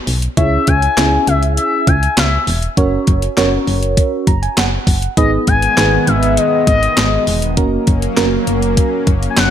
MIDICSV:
0, 0, Header, 1, 6, 480
1, 0, Start_track
1, 0, Tempo, 600000
1, 298, Time_signature, 4, 2, 24, 8
1, 7603, End_track
2, 0, Start_track
2, 0, Title_t, "Analog synth lead"
2, 0, Program_c, 0, 81
2, 298, Note_on_c, 0, 76, 107
2, 541, Note_on_c, 0, 80, 124
2, 553, Note_off_c, 0, 76, 0
2, 1020, Note_off_c, 0, 80, 0
2, 1023, Note_on_c, 0, 76, 87
2, 1130, Note_off_c, 0, 76, 0
2, 1262, Note_on_c, 0, 76, 99
2, 1503, Note_on_c, 0, 80, 102
2, 1515, Note_off_c, 0, 76, 0
2, 1737, Note_off_c, 0, 80, 0
2, 1741, Note_on_c, 0, 76, 84
2, 2075, Note_off_c, 0, 76, 0
2, 4139, Note_on_c, 0, 75, 106
2, 4247, Note_off_c, 0, 75, 0
2, 4381, Note_on_c, 0, 80, 123
2, 4860, Note_on_c, 0, 76, 100
2, 4872, Note_off_c, 0, 80, 0
2, 5100, Note_on_c, 0, 75, 99
2, 5112, Note_off_c, 0, 76, 0
2, 5334, Note_off_c, 0, 75, 0
2, 5339, Note_on_c, 0, 75, 86
2, 5787, Note_off_c, 0, 75, 0
2, 7442, Note_on_c, 0, 80, 77
2, 7497, Note_on_c, 0, 78, 109
2, 7509, Note_off_c, 0, 80, 0
2, 7603, Note_off_c, 0, 78, 0
2, 7603, End_track
3, 0, Start_track
3, 0, Title_t, "FM electric piano"
3, 0, Program_c, 1, 5
3, 300, Note_on_c, 1, 61, 77
3, 300, Note_on_c, 1, 64, 70
3, 300, Note_on_c, 1, 68, 68
3, 300, Note_on_c, 1, 73, 84
3, 671, Note_off_c, 1, 64, 0
3, 671, Note_off_c, 1, 68, 0
3, 671, Note_off_c, 1, 73, 0
3, 672, Note_off_c, 1, 61, 0
3, 780, Note_on_c, 1, 64, 70
3, 780, Note_on_c, 1, 76, 85
3, 781, Note_on_c, 1, 61, 78
3, 781, Note_on_c, 1, 68, 72
3, 1523, Note_off_c, 1, 76, 0
3, 1524, Note_off_c, 1, 61, 0
3, 1524, Note_off_c, 1, 64, 0
3, 1524, Note_off_c, 1, 68, 0
3, 2219, Note_on_c, 1, 61, 87
3, 2220, Note_on_c, 1, 66, 85
3, 2220, Note_on_c, 1, 73, 101
3, 2221, Note_on_c, 1, 70, 83
3, 2591, Note_off_c, 1, 61, 0
3, 2591, Note_off_c, 1, 73, 0
3, 2592, Note_off_c, 1, 66, 0
3, 2592, Note_off_c, 1, 70, 0
3, 2699, Note_on_c, 1, 61, 93
3, 2699, Note_on_c, 1, 66, 86
3, 2699, Note_on_c, 1, 73, 102
3, 2700, Note_on_c, 1, 70, 86
3, 3420, Note_on_c, 1, 82, 75
3, 3443, Note_off_c, 1, 61, 0
3, 3443, Note_off_c, 1, 66, 0
3, 3443, Note_off_c, 1, 70, 0
3, 3443, Note_off_c, 1, 73, 0
3, 3531, Note_off_c, 1, 82, 0
3, 3540, Note_on_c, 1, 80, 74
3, 3651, Note_off_c, 1, 80, 0
3, 3660, Note_on_c, 1, 78, 76
3, 4107, Note_off_c, 1, 78, 0
3, 4139, Note_on_c, 1, 59, 78
3, 4139, Note_on_c, 1, 63, 72
3, 4139, Note_on_c, 1, 68, 72
3, 4139, Note_on_c, 1, 71, 84
3, 4511, Note_off_c, 1, 59, 0
3, 4511, Note_off_c, 1, 63, 0
3, 4511, Note_off_c, 1, 68, 0
3, 4511, Note_off_c, 1, 71, 0
3, 4619, Note_on_c, 1, 51, 72
3, 4619, Note_on_c, 1, 59, 80
3, 4619, Note_on_c, 1, 68, 71
3, 4619, Note_on_c, 1, 71, 87
3, 5363, Note_off_c, 1, 51, 0
3, 5363, Note_off_c, 1, 59, 0
3, 5363, Note_off_c, 1, 68, 0
3, 5363, Note_off_c, 1, 71, 0
3, 6058, Note_on_c, 1, 58, 92
3, 6058, Note_on_c, 1, 61, 82
3, 6058, Note_on_c, 1, 66, 82
3, 6058, Note_on_c, 1, 70, 98
3, 6430, Note_off_c, 1, 58, 0
3, 6430, Note_off_c, 1, 61, 0
3, 6430, Note_off_c, 1, 66, 0
3, 6430, Note_off_c, 1, 70, 0
3, 6538, Note_on_c, 1, 58, 96
3, 6538, Note_on_c, 1, 61, 83
3, 6538, Note_on_c, 1, 66, 86
3, 6538, Note_on_c, 1, 70, 104
3, 7282, Note_off_c, 1, 58, 0
3, 7282, Note_off_c, 1, 61, 0
3, 7282, Note_off_c, 1, 66, 0
3, 7282, Note_off_c, 1, 70, 0
3, 7603, End_track
4, 0, Start_track
4, 0, Title_t, "Analog synth pad"
4, 0, Program_c, 2, 89
4, 4138, Note_on_c, 2, 56, 82
4, 4139, Note_on_c, 2, 51, 85
4, 4139, Note_on_c, 2, 59, 97
4, 6039, Note_off_c, 2, 56, 0
4, 6040, Note_off_c, 2, 51, 0
4, 6040, Note_off_c, 2, 59, 0
4, 6059, Note_on_c, 2, 61, 93
4, 6060, Note_on_c, 2, 54, 85
4, 6060, Note_on_c, 2, 58, 82
4, 7603, Note_off_c, 2, 54, 0
4, 7603, Note_off_c, 2, 58, 0
4, 7603, Note_off_c, 2, 61, 0
4, 7603, End_track
5, 0, Start_track
5, 0, Title_t, "FM bass"
5, 0, Program_c, 3, 39
5, 58, Note_on_c, 3, 35, 89
5, 226, Note_off_c, 3, 35, 0
5, 298, Note_on_c, 3, 37, 120
5, 466, Note_off_c, 3, 37, 0
5, 542, Note_on_c, 3, 37, 104
5, 709, Note_off_c, 3, 37, 0
5, 779, Note_on_c, 3, 37, 102
5, 947, Note_off_c, 3, 37, 0
5, 1019, Note_on_c, 3, 37, 102
5, 1271, Note_off_c, 3, 37, 0
5, 1499, Note_on_c, 3, 37, 105
5, 1667, Note_off_c, 3, 37, 0
5, 1738, Note_on_c, 3, 37, 96
5, 1906, Note_off_c, 3, 37, 0
5, 1978, Note_on_c, 3, 28, 92
5, 2147, Note_off_c, 3, 28, 0
5, 2219, Note_on_c, 3, 30, 103
5, 2387, Note_off_c, 3, 30, 0
5, 2462, Note_on_c, 3, 30, 104
5, 2629, Note_off_c, 3, 30, 0
5, 2699, Note_on_c, 3, 30, 104
5, 2867, Note_off_c, 3, 30, 0
5, 2939, Note_on_c, 3, 30, 104
5, 3191, Note_off_c, 3, 30, 0
5, 3419, Note_on_c, 3, 30, 110
5, 3587, Note_off_c, 3, 30, 0
5, 3659, Note_on_c, 3, 30, 106
5, 3827, Note_off_c, 3, 30, 0
5, 3896, Note_on_c, 3, 30, 94
5, 4065, Note_off_c, 3, 30, 0
5, 4138, Note_on_c, 3, 32, 105
5, 4306, Note_off_c, 3, 32, 0
5, 4381, Note_on_c, 3, 32, 97
5, 4548, Note_off_c, 3, 32, 0
5, 4619, Note_on_c, 3, 32, 116
5, 4787, Note_off_c, 3, 32, 0
5, 4858, Note_on_c, 3, 32, 113
5, 5110, Note_off_c, 3, 32, 0
5, 5339, Note_on_c, 3, 32, 104
5, 5507, Note_off_c, 3, 32, 0
5, 5576, Note_on_c, 3, 32, 113
5, 5745, Note_off_c, 3, 32, 0
5, 5818, Note_on_c, 3, 28, 84
5, 6058, Note_on_c, 3, 30, 119
5, 6070, Note_off_c, 3, 28, 0
5, 6226, Note_off_c, 3, 30, 0
5, 6301, Note_on_c, 3, 30, 102
5, 6468, Note_off_c, 3, 30, 0
5, 6538, Note_on_c, 3, 30, 111
5, 6706, Note_off_c, 3, 30, 0
5, 6778, Note_on_c, 3, 30, 101
5, 7030, Note_off_c, 3, 30, 0
5, 7257, Note_on_c, 3, 30, 111
5, 7426, Note_off_c, 3, 30, 0
5, 7497, Note_on_c, 3, 30, 104
5, 7603, Note_off_c, 3, 30, 0
5, 7603, End_track
6, 0, Start_track
6, 0, Title_t, "Drums"
6, 58, Note_on_c, 9, 46, 88
6, 138, Note_off_c, 9, 46, 0
6, 178, Note_on_c, 9, 42, 60
6, 258, Note_off_c, 9, 42, 0
6, 298, Note_on_c, 9, 36, 110
6, 298, Note_on_c, 9, 42, 89
6, 378, Note_off_c, 9, 36, 0
6, 378, Note_off_c, 9, 42, 0
6, 537, Note_on_c, 9, 42, 76
6, 541, Note_on_c, 9, 36, 86
6, 617, Note_off_c, 9, 42, 0
6, 621, Note_off_c, 9, 36, 0
6, 659, Note_on_c, 9, 42, 61
6, 739, Note_off_c, 9, 42, 0
6, 780, Note_on_c, 9, 38, 106
6, 780, Note_on_c, 9, 39, 88
6, 781, Note_on_c, 9, 42, 75
6, 860, Note_off_c, 9, 38, 0
6, 860, Note_off_c, 9, 39, 0
6, 861, Note_off_c, 9, 42, 0
6, 1019, Note_on_c, 9, 42, 74
6, 1099, Note_off_c, 9, 42, 0
6, 1141, Note_on_c, 9, 42, 57
6, 1221, Note_off_c, 9, 42, 0
6, 1259, Note_on_c, 9, 42, 89
6, 1339, Note_off_c, 9, 42, 0
6, 1498, Note_on_c, 9, 42, 79
6, 1499, Note_on_c, 9, 36, 99
6, 1578, Note_off_c, 9, 42, 0
6, 1579, Note_off_c, 9, 36, 0
6, 1622, Note_on_c, 9, 42, 53
6, 1702, Note_off_c, 9, 42, 0
6, 1741, Note_on_c, 9, 38, 121
6, 1741, Note_on_c, 9, 39, 98
6, 1741, Note_on_c, 9, 42, 80
6, 1821, Note_off_c, 9, 38, 0
6, 1821, Note_off_c, 9, 39, 0
6, 1821, Note_off_c, 9, 42, 0
6, 1978, Note_on_c, 9, 46, 87
6, 2058, Note_off_c, 9, 46, 0
6, 2099, Note_on_c, 9, 42, 58
6, 2179, Note_off_c, 9, 42, 0
6, 2218, Note_on_c, 9, 36, 115
6, 2219, Note_on_c, 9, 42, 90
6, 2298, Note_off_c, 9, 36, 0
6, 2299, Note_off_c, 9, 42, 0
6, 2458, Note_on_c, 9, 42, 81
6, 2461, Note_on_c, 9, 36, 90
6, 2538, Note_off_c, 9, 42, 0
6, 2541, Note_off_c, 9, 36, 0
6, 2579, Note_on_c, 9, 42, 61
6, 2659, Note_off_c, 9, 42, 0
6, 2700, Note_on_c, 9, 38, 104
6, 2700, Note_on_c, 9, 39, 88
6, 2700, Note_on_c, 9, 42, 77
6, 2780, Note_off_c, 9, 38, 0
6, 2780, Note_off_c, 9, 39, 0
6, 2780, Note_off_c, 9, 42, 0
6, 2939, Note_on_c, 9, 46, 55
6, 3019, Note_off_c, 9, 46, 0
6, 3060, Note_on_c, 9, 42, 58
6, 3140, Note_off_c, 9, 42, 0
6, 3178, Note_on_c, 9, 36, 102
6, 3179, Note_on_c, 9, 42, 88
6, 3258, Note_off_c, 9, 36, 0
6, 3259, Note_off_c, 9, 42, 0
6, 3418, Note_on_c, 9, 36, 101
6, 3418, Note_on_c, 9, 42, 79
6, 3498, Note_off_c, 9, 36, 0
6, 3498, Note_off_c, 9, 42, 0
6, 3542, Note_on_c, 9, 42, 54
6, 3622, Note_off_c, 9, 42, 0
6, 3660, Note_on_c, 9, 42, 80
6, 3661, Note_on_c, 9, 38, 116
6, 3661, Note_on_c, 9, 39, 97
6, 3740, Note_off_c, 9, 42, 0
6, 3741, Note_off_c, 9, 38, 0
6, 3741, Note_off_c, 9, 39, 0
6, 3896, Note_on_c, 9, 36, 102
6, 3898, Note_on_c, 9, 46, 89
6, 3976, Note_off_c, 9, 36, 0
6, 3978, Note_off_c, 9, 46, 0
6, 4019, Note_on_c, 9, 42, 59
6, 4099, Note_off_c, 9, 42, 0
6, 4138, Note_on_c, 9, 36, 109
6, 4138, Note_on_c, 9, 42, 89
6, 4218, Note_off_c, 9, 36, 0
6, 4218, Note_off_c, 9, 42, 0
6, 4378, Note_on_c, 9, 42, 76
6, 4381, Note_on_c, 9, 36, 83
6, 4458, Note_off_c, 9, 42, 0
6, 4461, Note_off_c, 9, 36, 0
6, 4500, Note_on_c, 9, 42, 60
6, 4580, Note_off_c, 9, 42, 0
6, 4620, Note_on_c, 9, 38, 108
6, 4620, Note_on_c, 9, 39, 88
6, 4621, Note_on_c, 9, 42, 75
6, 4700, Note_off_c, 9, 38, 0
6, 4700, Note_off_c, 9, 39, 0
6, 4701, Note_off_c, 9, 42, 0
6, 4859, Note_on_c, 9, 42, 76
6, 4939, Note_off_c, 9, 42, 0
6, 4981, Note_on_c, 9, 42, 59
6, 5061, Note_off_c, 9, 42, 0
6, 5099, Note_on_c, 9, 42, 92
6, 5179, Note_off_c, 9, 42, 0
6, 5338, Note_on_c, 9, 36, 101
6, 5338, Note_on_c, 9, 42, 83
6, 5418, Note_off_c, 9, 36, 0
6, 5418, Note_off_c, 9, 42, 0
6, 5462, Note_on_c, 9, 42, 54
6, 5542, Note_off_c, 9, 42, 0
6, 5579, Note_on_c, 9, 42, 83
6, 5580, Note_on_c, 9, 38, 117
6, 5580, Note_on_c, 9, 39, 96
6, 5659, Note_off_c, 9, 42, 0
6, 5660, Note_off_c, 9, 38, 0
6, 5660, Note_off_c, 9, 39, 0
6, 5818, Note_on_c, 9, 46, 86
6, 5898, Note_off_c, 9, 46, 0
6, 5938, Note_on_c, 9, 42, 61
6, 6018, Note_off_c, 9, 42, 0
6, 6057, Note_on_c, 9, 42, 87
6, 6058, Note_on_c, 9, 36, 112
6, 6137, Note_off_c, 9, 42, 0
6, 6138, Note_off_c, 9, 36, 0
6, 6297, Note_on_c, 9, 42, 81
6, 6301, Note_on_c, 9, 36, 89
6, 6377, Note_off_c, 9, 42, 0
6, 6381, Note_off_c, 9, 36, 0
6, 6419, Note_on_c, 9, 42, 62
6, 6499, Note_off_c, 9, 42, 0
6, 6538, Note_on_c, 9, 38, 112
6, 6538, Note_on_c, 9, 39, 90
6, 6539, Note_on_c, 9, 42, 78
6, 6618, Note_off_c, 9, 38, 0
6, 6618, Note_off_c, 9, 39, 0
6, 6619, Note_off_c, 9, 42, 0
6, 6778, Note_on_c, 9, 42, 76
6, 6858, Note_off_c, 9, 42, 0
6, 6900, Note_on_c, 9, 42, 58
6, 6980, Note_off_c, 9, 42, 0
6, 7018, Note_on_c, 9, 36, 103
6, 7018, Note_on_c, 9, 42, 91
6, 7098, Note_off_c, 9, 36, 0
6, 7098, Note_off_c, 9, 42, 0
6, 7256, Note_on_c, 9, 42, 79
6, 7258, Note_on_c, 9, 36, 101
6, 7336, Note_off_c, 9, 42, 0
6, 7338, Note_off_c, 9, 36, 0
6, 7380, Note_on_c, 9, 42, 53
6, 7460, Note_off_c, 9, 42, 0
6, 7497, Note_on_c, 9, 42, 82
6, 7498, Note_on_c, 9, 38, 118
6, 7498, Note_on_c, 9, 39, 95
6, 7577, Note_off_c, 9, 42, 0
6, 7578, Note_off_c, 9, 38, 0
6, 7578, Note_off_c, 9, 39, 0
6, 7603, End_track
0, 0, End_of_file